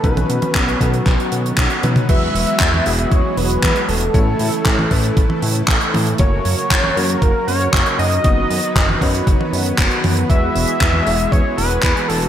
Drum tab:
CC |----------------|x---------------|----------------|----------------|
HH |xxxxxxxxxxxxxxxx|x-oxx-oxx-oxxxox|x-oxx-oxx-oxxxox|x-oxx-oxx-oxxxox|
CP |----x---x---x---|----x-------x---|----x-------x---|----x-------x---|
T1 |-o-o----------o-|-----o----------|-----o---o----o-|-----o----------|
T2 |---------------o|----------------|----------------|----------------|
BD |o---o-o-o---o---|o---o---o---o---|o---o-o-o---o---|o---o---o---o---|

CC |----------------|----------------|
HH |x-oxx-oxx-oxxxox|x-oxx-oxx-oxxxox|
CP |----x-------x---|----x-------x---|
T1 |-----o---o----o-|-----o----------|
T2 |----------------|----------------|
BD |o---o-o-o---o---|o---o---o---o---|